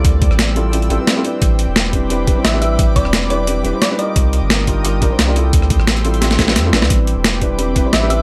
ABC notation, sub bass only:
X:1
M:4/4
L:1/16
Q:"Swing 16ths" 1/4=175
K:Am
V:1 name="Sub bass" clef=bass
D,,3 A,,,6- A,,, A,,, z4 z | A,,,3 E,,,8 z A,,,4 | A,,,3 E,,,6- E,,, E,,, z4 z | C,,3 G,,,8 z C,,4 |
D,,3 A,,,6- A,,, A,,,2 F,,2 A,,, D,, | A,,,3 E,,,8 z A,,,4 |]